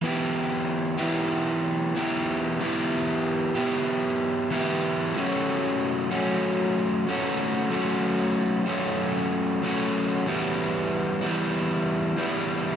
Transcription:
\new Staff \with { instrumentName = "Overdriven electric guitar" } { \time 4/4 \key e \minor \tempo 4 = 94 <e b e' g'>4. <e b e' g'>4. <e b e' g'>4 | <e b e' g'>4. <e b e' g'>4. <e b e' g'>4 | <fis a cis' fis'>4. <fis a cis' fis'>4. <fis a cis' fis'>4 | <fis a cis' fis'>4. <fis a cis' fis'>4. <fis a cis' fis'>4 |
<e g b e'>4. <e g b e'>4. <e g b e'>4 | }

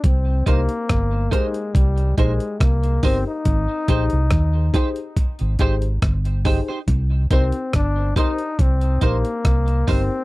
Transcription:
<<
  \new Staff \with { instrumentName = "Clean electric guitar" } { \time 4/4 \key c \minor \tempo 4 = 70 r8 <ees' bes' c''>16 r8. <ees' bes' c''>16 r8. <ees' bes' c''>16 r8. <ees' bes' c''>16 r16 | r8 <ees' g' c''>16 r8. <ees' g' c''>16 r8. <ees' g' c''>16 r8. <ees' g' c''>16 <ees' g' c''>16 | r8 <ees' bes' c''>16 r8. <ees' bes' c''>16 r8. <ees' bes' c''>16 r8. <ees' bes' c''>16 r16 | }
  \new Staff \with { instrumentName = "Upright piano" } { \time 4/4 \key c \minor r8 <ees' g' bes' c''>16 r8 <bes' c''>16 <ees' g' bes' c''>16 r8. <ees' g' bes' c''>16 r8. <ees' g' bes' c''>16 r16 | r8 <ees' g' aes' c''>16 r8 <aes' c''>16 <ees' g' aes' c''>16 r8. <ees' g' aes' c''>16 r8. <ees' g' aes' c''>16 r16 | r8 <ees' g' bes' c''>16 r8 <bes' c''>16 <ees' g' bes' c''>16 r8. <ees' g' bes' c''>16 r8. <ees' g' bes' c''>16 r16 | }
  \new Staff \with { instrumentName = "Trombone" } { \time 4/4 \key c \minor c'8 bes4 aes8 g8 aes8 bes8 c'16 ees'16~ | ees'4.~ ees'16 r2 r16 | r8 c'8 d'8 ees'8 c'8 bes4 c'8 | }
  \new Staff \with { instrumentName = "Fingered electric bass" } { \clef bass \time 4/4 \key c \minor c,8 c,16 r16 g,,8 r8 c,8 bes,,16 r16 c,8 g,,16 r16 | aes,,16 r16 bes,,16 c,16 ees,8 r8. aes,,16 aes,,8 g,,8. r16 | c,8 c,16 r16 g,,8 r8 c,8 bes,,16 r16 c,8 g,,16 r16 | }
  \new DrumStaff \with { instrumentName = "Drums" } \drummode { \time 4/4 <hh bd>8 <hh bd>16 hh16 <hh bd ss>8 <hh bd>16 hh16 <hh bd>16 hh16 <hh bd>16 hh16 <hh bd ss>16 hh16 <hho bd>8 | <hh bd>8 <hh bd>16 hh16 <hh bd ss>8 <hh bd>16 hh16 <hh bd>16 hh16 <hh bd>16 hh16 <hh bd ss>16 hh16 <hho bd>8 | <hh bd>8 <hh bd>16 hh16 <hh bd ss>8 <hh bd>16 hh16 <hh bd>16 hh16 <hh bd>16 hh16 <hh bd ss>16 hh16 <hho bd>8 | }
>>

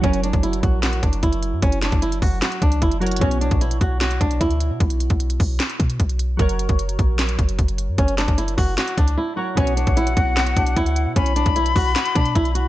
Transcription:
<<
  \new Staff \with { instrumentName = "Flute" } { \time 4/4 \key b \minor \tempo 4 = 151 r1 | r1 | r1 | r1 |
r1 | r1 | fis''1 | b''1 | }
  \new Staff \with { instrumentName = "Synth keys" } { \time 4/4 \key b \minor <fis fis' ais' cis''>1~ | <fis fis' ais' cis''>2.~ <fis fis' ais' cis''>8 <fis fis' ais' cis''>8 | <b, b fis' cis''>1~ | <b, b fis' cis''>1 |
<fis fis' ais' cis''>1~ | <fis fis' ais' cis''>2.~ <fis fis' ais' cis''>8 <fis fis' ais' cis''>8 | <b, b fis' cis''>1~ | <b, b fis' cis''>1 | }
  \new Staff \with { instrumentName = "Nylon-string guitar" } { \time 4/4 \key b \minor cis'8 d'8 e'8 fis'8 fis'8 d'8 e'4 | cis'8 d'8 e'8 fis'8 fis'8 d'8 e'8 fis'8 | cis'8 d'8 e'8 fis'8 fis'8 d'8 e'4 | r1 |
r1 | cis'8 d'8 e'8 fis'8 fis'8 d'8 e'8 fis'8 | cis'8 d'8 e'8 fis'8 fis'8 d'8 e'4 | cis'8 d'8 e'8 fis'8 fis'8 d'8 e'8 fis'8 | }
  \new Staff \with { instrumentName = "808-style bass" } { \clef bass \time 4/4 \key b \minor fis,,8. fis,,8. ais,,4 fis,,8 fis,,8. fis,16 | fis,,8. fis,,8. fis,,8 r8 cis,8 fis,,4 | b,,8. ais,,8. b,,4 b,,8 d,8. b,16 | b,,8. b,,8. b,,8 r8 b,8 b,,4 |
fis,,8. fis,,8. ais,,4 fis,,8 fis,,8. fis,16 | fis,,8. fis,,8. fis,,8 r8 cis,8 r4 | b,,8. ais,,8. b,,4 b,,8 d,8. b,16 | b,,8. b,,8. b,,8 r8 b,8 b,,4 | }
  \new DrumStaff \with { instrumentName = "Drums" } \drummode { \time 4/4 <hh bd>16 hh16 hh16 <hh bd>16 hh16 hh16 <hh bd>8 <hc hh sn>16 hh16 <hh bd>16 hh16 <hh bd>16 hh16 hh8 | <hh bd>16 hh16 <hc hh sn>16 <hh bd>16 hh16 hh16 <hho bd>8 <hc hh sn>16 hh16 <hh bd>16 hh16 <hh bd>16 hh16 hh32 hh32 hh32 hh32 | <hh bd>16 hh16 hh16 <hh bd>16 hh16 hh16 <hh bd>8 <hc hh sn>16 hh16 <hh bd>16 hh16 <hh bd>16 hh16 hh8 | <hh bd>16 hh16 hh16 <hh bd>16 hh16 hh16 <hho bd>8 <hc hh sn>16 hh16 <hh bd>16 hh16 <hh bd>16 hh16 hh8 |
<hh bd>16 hh16 hh16 <hh bd>16 hh16 hh16 <hh bd>8 <hc hh sn>16 hh16 <hh bd>16 hh16 <hh bd>16 hh16 hh8 | <hh bd>16 hh16 <hc hh sn>16 <hh bd>16 hh16 hh16 <hho bd>8 <hc hh sn>16 hh16 <hh bd>16 hh16 r4 | <hh bd>16 hh16 hh16 <hh bd>16 hh16 hh16 <hh bd>8 <hc hh sn>16 hh16 <hh bd>16 hh16 <hh bd>16 hh16 hh8 | <hh bd>16 hh16 hh16 <hh bd>16 hh16 hh16 <hho bd>8 <hc hh sn>16 hh16 <hh bd>16 hh16 <hh bd>16 hh16 hh8 | }
>>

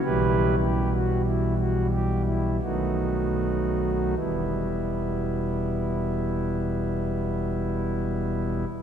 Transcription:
<<
  \new Staff \with { instrumentName = "Pipe organ" } { \time 3/4 \key e \minor \tempo 4 = 39 <e' g' b'>8 g'16 fis'16 e'16 fis'16 g'16 e'16 <b dis' fis'>4 | <e, b, g b e'>2. | }
  \new Staff \with { instrumentName = "Pipe organ" } { \clef bass \time 3/4 \key e \minor <b,, b, e g>2 <b,, b, dis fis a>4 | e,,2. | }
>>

